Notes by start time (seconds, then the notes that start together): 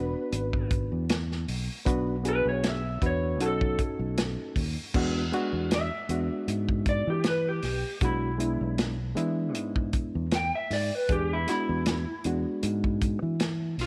Already playing: E1 B3 D4 F#4 B4
0.32 G#1, closed hi-hat
0.53 kick
0.71 kick, closed hi-hat
0.92 E2
1.09 snare, closed hi-hat
1.31 snare
1.48 B1, open hi-hat
1.86 B1 B3 D4 F#4 B4, kick, closed hi-hat
2.23 B3 D4 F#4 G#4, closed hi-hat
2.29 B4
2.45 B1 C#5
2.63 snare, closed hi-hat
2.68 E5
3.01 E2 B3 D4 F#4 B4, kick, closed hi-hat
3.06 C#5
3.40 B1 C#4 D#4 F#4 A4, closed hi-hat
3.46 A4
3.61 kick
3.79 kick, closed hi-hat
3.99 B1
4.18 snare, closed hi-hat
4.56 D#2, kick, open hi-hat
4.94 E2 G#3 B3 D4 F#4, kick, crash
5.32 G#3 B3 D4 F#4, closed hi-hat
5.53 E2
5.71 E5, snare, closed hi-hat
6.09 E2 G#3 B3 D4 F#4, closed hi-hat
6.48 G#2, closed hi-hat
6.69 kick
6.86 D5, kick, closed hi-hat
7.07 E3 G4
7.24 snare, closed hi-hat
7.28 B4
7.49 G4
7.62 B1, snare, open hi-hat
8.01 B1 G#3 B3 D4 E4 F#4, kick, closed hi-hat
8.38 G#3 B3 D4 E4, closed hi-hat
8.61 B1
8.78 snare, closed hi-hat
9.15 E3 G#3 B3 D4 E4, closed hi-hat
9.55 G#2, closed hi-hat
9.76 kick
9.93 kick, closed hi-hat
10.15 E2
10.31 G5, snare, closed hi-hat
10.55 E5
10.70 G#2 D5, snare, open hi-hat
10.95 B4
11.09 E2 G#3 B3 D4 G4 G#4, kick, closed hi-hat
11.33 E4
11.47 G#3 B3 D4 E4 F#4, snare, closed hi-hat
11.69 E2
11.86 snare, closed hi-hat
12.24 E2 G#3 B3 D4 F#4, closed hi-hat
12.63 G#2, closed hi-hat
12.84 kick
13.01 kick, closed hi-hat
13.22 E3
13.40 snare, closed hi-hat
13.78 B1 G4, snare, open hi-hat